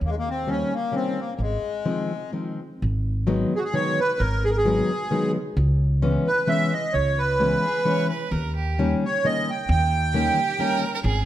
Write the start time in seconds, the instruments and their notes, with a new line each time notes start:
0.01 upright bass D#2
0.06 accordion G#3 A#3
0.18 accordion A#3
0.30 accordion C4
0.47 steel-string acoustic guitar D#3 G3 A#3 C#4, accordion C#4
0.74 accordion A#3
0.92 steel-string acoustic guitar D#3 G3 A#3 C#4, accordion C4
1.20 accordion A#3
1.35 upright bass G#1, accordion A#3
1.41 accordion G#3
1.85 steel-string acoustic guitar D#3 F3 G#3 C4
2.32 steel-string acoustic guitar D#3 F3 G#3 C4
2.82 upright bass G#1
3.27 steel-string acoustic guitar D#3 F#3 G#3 B3
3.56 accordion F#4 G#4
3.64 accordion G#4
3.74 steel-string acoustic guitar D#3 F#3 G#3 B3, accordion C#5
4.00 accordion B4
4.19 upright bass G#1, accordion A#4
4.44 accordion G#4
4.50 accordion A#4
4.57 accordion G#4
4.65 steel-string acoustic guitar D#3 F#3 G#3 B3
5.11 steel-string acoustic guitar D#3 F#3 G#3 B3
5.57 upright bass C#2
6.02 steel-string acoustic guitar E3 G#3 B3 C#4
6.27 accordion B4
6.47 steel-string acoustic guitar E3 G#3 B3 C#4, accordion E5
6.73 accordion D#5
6.93 upright bass C#2, accordion C#5
7.18 accordion B4
7.39 steel-string acoustic guitar E3 G#3 B3 C#4
7.65 violin G#4
7.85 steel-string acoustic guitar E3 G#3 B3 C#4, violin C#5
8.10 violin B4
8.31 upright bass D#2, violin A#4
8.56 violin G4
8.79 steel-string acoustic guitar D#3 G3 A#3 C#4
9.05 accordion C#5
9.24 steel-string acoustic guitar D#3 G3 A#3 C#4, accordion D#5
9.50 accordion G5
9.69 upright bass D#2, accordion G5
10.14 steel-string acoustic guitar D#3 G3 A#3 C#4, violin G4
10.59 steel-string acoustic guitar D#3 G3 A#3 C#4, violin A#4
10.95 violin A#4
11.04 upright bass G#1, violin G#4